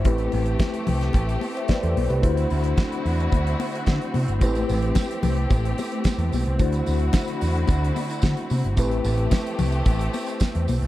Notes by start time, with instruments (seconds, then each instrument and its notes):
0.04 picked electric bass A1, tine electric piano A3 C4 E4 G4 B4, string section A3 C4 G4, kick, closed hi-hat
0.18 closed hi-hat
0.32 picked electric bass A1, open hi-hat, muted conga
0.45 closed hi-hat
0.59 kick, snare, closed hi-hat, high conga
0.74 closed hi-hat
0.87 picked electric bass C2, open hi-hat, low conga
1.01 snare, closed hi-hat
1.13 picked electric bass A1, kick, closed hi-hat, muted conga
1.29 closed hi-hat
1.41 open hi-hat, muted conga
1.57 tine electric piano C5 E5, closed hi-hat
1.68 tine electric piano B4 D5, kick, snare, closed hi-hat, high conga
1.83 picked electric bass E2, tine electric piano A4 C5, closed hi-hat
1.97 picked electric bass B1, open hi-hat, high conga
2.09 picked electric bass C2, tine electric piano G4 B4, closed hi-hat
2.20 picked electric bass D2, string section D3 E4 F#4, tine electric piano A3 D4 E4 F#4 C5, kick, closed hi-hat
2.37 closed hi-hat
2.50 picked electric bass D2, open hi-hat, muted conga
2.64 closed hi-hat
2.77 kick, snare, closed hi-hat, high conga
2.92 closed hi-hat
3.06 picked electric bass E2, open hi-hat
3.20 closed hi-hat
3.32 picked electric bass D2, kick, closed hi-hat, muted conga
3.47 closed hi-hat
3.60 open hi-hat, muted conga
3.75 closed hi-hat
3.86 picked electric bass D3, kick, snare, closed hi-hat, high conga
4.02 closed hi-hat
4.14 picked electric bass C3, open hi-hat, high conga
4.28 picked electric bass G1, closed hi-hat
4.40 picked electric bass A1, tine electric piano A3 B3 E4 G4 B4, string section A3 G4, kick, closed hi-hat, tambourine
4.46 tine electric piano C4
4.55 closed hi-hat, tambourine
4.69 picked electric bass A1, open hi-hat, tambourine
4.82 closed hi-hat
4.95 kick, snare, closed hi-hat, tambourine, high conga
5.11 closed hi-hat
5.23 picked electric bass C2, open hi-hat, tambourine, low conga
5.37 closed hi-hat
5.50 picked electric bass A1, kick, closed hi-hat, tambourine, muted conga
5.65 closed hi-hat
5.78 open hi-hat, tambourine, muted conga
5.92 closed hi-hat
6.04 kick, snare, closed hi-hat, tambourine, high conga
6.18 picked electric bass E2, closed hi-hat
6.32 picked electric bass B1, open hi-hat, tambourine, high conga
6.45 picked electric bass C2, closed hi-hat
6.58 picked electric bass D2, string section D3 E4 F#4, tine electric piano A3 D4 E4 F#4 C5, kick, closed hi-hat, tambourine
6.72 closed hi-hat, tambourine
6.86 picked electric bass D2, open hi-hat, tambourine, muted conga
6.99 closed hi-hat
7.13 kick, snare, closed hi-hat, tambourine, high conga
7.28 closed hi-hat
7.41 picked electric bass E2, open hi-hat, tambourine
7.56 closed hi-hat
7.67 picked electric bass D2, kick, closed hi-hat, tambourine, muted conga
7.84 closed hi-hat
7.96 open hi-hat, tambourine, muted conga
8.10 closed hi-hat, tambourine
8.22 picked electric bass D3, kick, snare, closed hi-hat, tambourine, high conga
8.37 closed hi-hat
8.50 picked electric bass C3, open hi-hat, tambourine, high conga
8.64 picked electric bass G1, closed hi-hat
8.76 picked electric bass A1, tine electric piano A3 C4 E4 G4 B4, string section A3 C4 G4, kick, closed hi-hat, tambourine
8.91 closed hi-hat
9.04 picked electric bass A1, open hi-hat, tambourine, muted conga
9.18 closed hi-hat
9.31 kick, snare, closed hi-hat, tambourine, high conga
9.46 closed hi-hat
9.59 picked electric bass C2, open hi-hat, tambourine, low conga
9.72 closed hi-hat, tambourine
9.86 picked electric bass A1, kick, closed hi-hat, tambourine, muted conga
9.99 closed hi-hat, tambourine
10.13 open hi-hat, tambourine, muted conga
10.26 closed hi-hat, tambourine
10.40 kick, snare, closed hi-hat, tambourine, high conga
10.55 picked electric bass E2, closed hi-hat
10.68 picked electric bass B1, open hi-hat, tambourine, high conga
10.81 picked electric bass C2, closed hi-hat